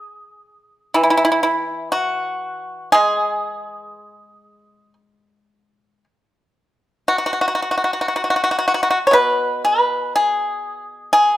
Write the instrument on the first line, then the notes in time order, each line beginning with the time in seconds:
pipa
Already playing: G#4
0.94 E3 E4
1.03 E4
1.10 E4
1.17 E4
1.25 E4
1.32 E4
1.43 E4
1.92 F#4
2.92 G#3 G#4
7.08 F#4
7.18 F#4
7.26 F#4
7.33 F#4
7.41 F#4
7.48 F#4
7.55 F#4
7.62 F#4
7.71 F#4
7.78 F#4
7.84 F#4
7.93 F#4
8.01 F#4
8.08 F#4
8.16 F#4
8.24 F#4
8.30 F#4
8.36 F#4
8.44 F#4
8.51 F#4
8.59 F#4
8.68 F#4
8.74 F#4
8.83 F#4
8.91 F#4
9.07 C#5
9.11 B2 B4
9.65 B4
10.16 G#4
11.13 G#4